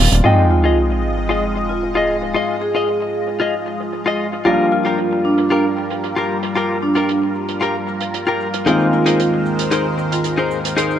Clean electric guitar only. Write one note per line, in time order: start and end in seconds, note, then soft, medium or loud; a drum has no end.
0.24 0.44 F4 medium
0.24 0.45 G#4 medium
0.24 0.45 D#5 loud
0.64 0.77 F4 medium
0.64 0.77 G#4 medium
0.64 0.78 D#5 medium
0.90 muted clean electric guitar stroke soft
1.29 1.43 F4 medium
1.29 1.43 G#4 medium
1.29 1.44 D#5 medium
1.55 muted clean electric guitar stroke soft
1.95 2.15 F4 medium
1.95 2.16 G#4 medium
1.95 2.16 D#5 medium
2.34 2.55 F4 medium
2.34 2.55 G#4 medium
2.34 2.56 D#5 loud
2.75 2.88 F4 medium
2.75 2.88 G#4 medium
2.75 2.88 D#5 medium
3.01 muted clean electric guitar stroke soft
3.40 3.54 F4 medium
3.40 3.54 G#4 medium
3.40 3.54 D#5 medium
3.66 muted clean electric guitar stroke soft
4.06 4.26 F4 medium
4.06 4.26 G#4 medium
4.06 4.27 D#5 medium
4.45 4.65 F4 loud
4.45 4.66 G4 medium
4.45 4.66 A#4 loud
4.85 4.98 F4 medium
4.85 4.98 G4 medium
4.85 4.99 A#4 medium
5.11 muted clean electric guitar stroke soft
5.50 5.64 F4 medium
5.50 5.65 G4 medium
5.50 5.65 A#4 medium
5.77 muted clean electric guitar stroke soft
6.16 6.36 F4 medium
6.16 6.37 G4 medium
6.16 6.37 A#4 medium
6.55 6.76 F4 loud
6.55 6.76 G4 medium
6.55 6.77 A#4 loud
6.95 7.08 F4 medium
6.95 7.09 G4 medium
6.95 7.09 A#4 medium
7.22 muted clean electric guitar stroke soft
7.61 7.75 F4 medium
7.61 7.75 G4 medium
7.61 7.76 A#4 medium
7.87 muted clean electric guitar stroke soft
8.27 8.47 F4 medium
8.27 8.47 G4 medium
8.27 8.48 A#4 medium
8.66 8.86 D#4 medium
8.66 8.87 G#4 medium
8.66 8.87 A#4 medium
8.66 8.87 C5 loud
9.06 9.19 D#4 medium
9.06 9.19 G#4 medium
9.06 9.20 A#4 medium
9.06 9.20 C5 medium
9.32 muted clean electric guitar stroke soft
9.71 9.85 D#4 medium
9.71 9.85 G#4 medium
9.71 9.86 A#4 medium
9.71 9.86 C5 medium
9.98 muted clean electric guitar stroke soft
10.37 10.57 D#4 medium
10.37 10.58 G#4 medium
10.37 10.58 A#4 medium
10.37 10.58 C5 medium
10.77 10.97 D#4 loud
10.77 10.97 G#4 medium
10.77 10.97 A#4 medium
10.77 10.98 C5 loud